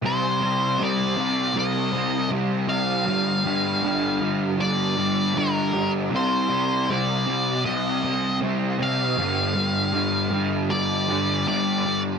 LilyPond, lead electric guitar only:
\new Staff \with { instrumentName = "Lead electric guitar" } { \time 4/4 \key c \dorian \tempo 4 = 79 c''4 d''4 ees''4 r8 f''8~ | f''2 d''4 bes'8. r16 | c''4 d''4 ees''4 r8 f''8~ | f''2 d''4 d''8. r16 | }